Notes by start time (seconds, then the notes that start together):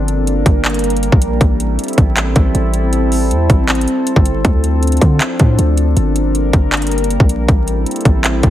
Already playing: G1 G3 A#3 D4 A#4
0.08 closed hi-hat
0.27 closed hi-hat
0.46 G1, kick, closed hi-hat
0.65 clap, closed hi-hat
0.70 closed hi-hat
0.74 closed hi-hat
0.79 closed hi-hat
0.84 closed hi-hat
0.90 closed hi-hat
0.97 closed hi-hat
1.03 closed hi-hat
1.12 A#1, kick
1.22 closed hi-hat
1.41 A1 C4 E4 A4, kick, closed hi-hat
1.60 closed hi-hat
1.79 closed hi-hat
1.84 closed hi-hat
1.88 closed hi-hat
1.93 closed hi-hat
1.98 A1, kick, closed hi-hat
2.17 clap, closed hi-hat
2.36 A1, kick, closed hi-hat
2.55 A1, closed hi-hat
2.74 closed hi-hat
2.93 closed hi-hat
3.12 open hi-hat
3.31 E2, closed hi-hat
3.50 A1, kick, closed hi-hat
3.69 clap, closed hi-hat
3.75 closed hi-hat
3.81 closed hi-hat
3.88 closed hi-hat
4.07 closed hi-hat
4.16 G1, kick
4.26 closed hi-hat
4.45 D2 F3 D4, kick, closed hi-hat
4.64 closed hi-hat
4.83 closed hi-hat
4.87 closed hi-hat
4.92 closed hi-hat
4.97 closed hi-hat
5.02 D3, kick, closed hi-hat
5.21 clap, closed hi-hat
5.39 A2, kick, closed hi-hat
5.59 D2, closed hi-hat
5.77 closed hi-hat
5.97 G1 G3 A#3 A#4, closed hi-hat
6.16 closed hi-hat
6.35 closed hi-hat
6.53 G1, kick, closed hi-hat
6.72 clap, closed hi-hat
6.77 closed hi-hat
6.82 closed hi-hat
6.87 closed hi-hat
6.92 closed hi-hat
6.98 closed hi-hat
7.04 closed hi-hat
7.10 closed hi-hat
7.20 A#1, kick
7.29 closed hi-hat
7.48 A1 C4 E4 A4, kick, closed hi-hat
7.68 closed hi-hat
7.86 closed hi-hat
7.91 closed hi-hat
7.96 closed hi-hat
8.01 closed hi-hat
8.05 A1, kick, closed hi-hat
8.24 clap, closed hi-hat
8.43 A1, kick, closed hi-hat